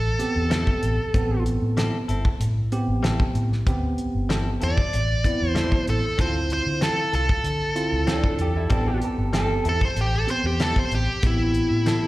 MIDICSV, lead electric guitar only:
0, 0, Header, 1, 2, 480
1, 0, Start_track
1, 0, Key_signature, 0, "minor"
1, 0, Tempo, 630252
1, 872, Time_signature, 4, 2, 24, 8
1, 9196, End_track
2, 0, Start_track
2, 0, Title_t, "Lead electric guitar"
2, 0, Program_c, 0, 29
2, 0, Note_on_c, 0, 69, 85
2, 1091, Note_off_c, 0, 69, 0
2, 3532, Note_on_c, 0, 74, 91
2, 4195, Note_off_c, 0, 74, 0
2, 4195, Note_on_c, 0, 72, 91
2, 4455, Note_off_c, 0, 72, 0
2, 4493, Note_on_c, 0, 69, 78
2, 4717, Note_off_c, 0, 69, 0
2, 4728, Note_on_c, 0, 72, 71
2, 4955, Note_off_c, 0, 72, 0
2, 4975, Note_on_c, 0, 72, 79
2, 5198, Note_off_c, 0, 72, 0
2, 5202, Note_on_c, 0, 69, 89
2, 5432, Note_off_c, 0, 69, 0
2, 5444, Note_on_c, 0, 69, 74
2, 6848, Note_off_c, 0, 69, 0
2, 7379, Note_on_c, 0, 69, 92
2, 7500, Note_off_c, 0, 69, 0
2, 7500, Note_on_c, 0, 72, 75
2, 7602, Note_off_c, 0, 72, 0
2, 7623, Note_on_c, 0, 67, 74
2, 7728, Note_off_c, 0, 67, 0
2, 7734, Note_on_c, 0, 69, 87
2, 7839, Note_off_c, 0, 69, 0
2, 7853, Note_on_c, 0, 72, 84
2, 7962, Note_off_c, 0, 72, 0
2, 7973, Note_on_c, 0, 67, 79
2, 8100, Note_off_c, 0, 67, 0
2, 8100, Note_on_c, 0, 69, 89
2, 8206, Note_off_c, 0, 69, 0
2, 8218, Note_on_c, 0, 72, 80
2, 8321, Note_off_c, 0, 72, 0
2, 8338, Note_on_c, 0, 67, 85
2, 8559, Note_off_c, 0, 67, 0
2, 8580, Note_on_c, 0, 64, 86
2, 9196, Note_off_c, 0, 64, 0
2, 9196, End_track
0, 0, End_of_file